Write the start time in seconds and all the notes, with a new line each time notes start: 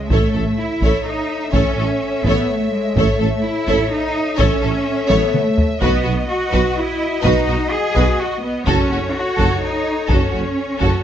0.08 A1 A3 A4 C#5 E5, taiko
0.12 C#5
0.34 A1 A4
0.57 E4
0.81 A1 A4 C#5, taiko
1.04 D#4
1.52 A1 C#4 A4 C#5, taiko
1.76 A1 A4
2.24 A1 B3 A4, taiko
2.28 C#5
2.48 A3
2.72 G#3
2.95 A1 A3 A4 C#5, taiko
3.19 A1 A4
3.43 E4
3.67 A1 A4 C#5, taiko
3.92 D#4
4.37 A1 C#4 A4 C#5 E5, taiko
4.62 A1 A4
5.08 A1 B3 A4 C#5, taiko high
5.34 A3, taiko mid
5.58 taiko low
5.81 B1 B3 F#4 B4 D#5, taiko
6.04 B1 F#4
6.30 F#4
6.51 B1 F#4 B4, taiko
6.78 E4
7.22 B1 D#4 F#4 B4, taiko
7.47 B1 F#4
7.71 G#4
7.94 B1 F#4 B4, taiko
8.20 F#4
8.42 B3
8.66 F#1 C#4 F#4 A4 C#5, taiko
8.90 F#1 F#4
9.14 F#4
9.37 F#1 F#4 A4, taiko
9.62 D#4
10.07 F#1 C#4 F#4 A4, taiko
10.32 F#1 F#4
10.79 F#1 F#4 A4, taiko